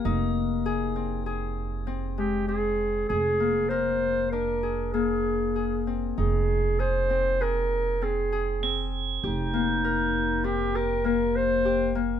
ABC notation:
X:1
M:5/4
L:1/8
Q:1/4=98
K:Fdor
V:1 name="Crotales"
z8 z2 | z8 z2 | z8 a''2- | a'' z8 z |]
V:2 name="Clarinet"
z6 z G A2 | A2 c2 B2 A3 z | A2 c2 B2 A3 z | E4 G B B c2 z |]
V:3 name="Harp"
E2 A C A2 C A, C2 | A B, B2 D A B,2 A C | E2 A C A2 C A C2 | G B, B2 C G B,2 G B, |]
V:4 name="Upright bass" clef=bass
F,,,8- F,,,2 | F,,,8- F,,,2 | F,,,8- F,,,2 | F,,,8- F,,,2 |]